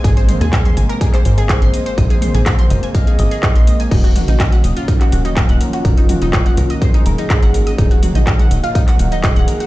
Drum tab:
CC |----------------|----------------|x---------------|----------------|
HH |xxoxxxoxxooxxxox|xxoxxxoxxxoxoxox|xxoxxxoxxooxxxox|xxoxxxoxxxoxxxox|
CP |----x----x--x---|----x-------x---|----x----x--x---|----x-------x---|
T2 |--o--o----------|--o--o----------|--o--o----------|--o--o----------|
BD |o---o---o---o---|o---o---o---o---|o---o---o---o---|o---o---o---o---|

CC |----------------|
HH |xxoxxxoxxooxxxox|
CP |----x----x--x---|
T2 |--o--o----------|
BD |o---o---o---o---|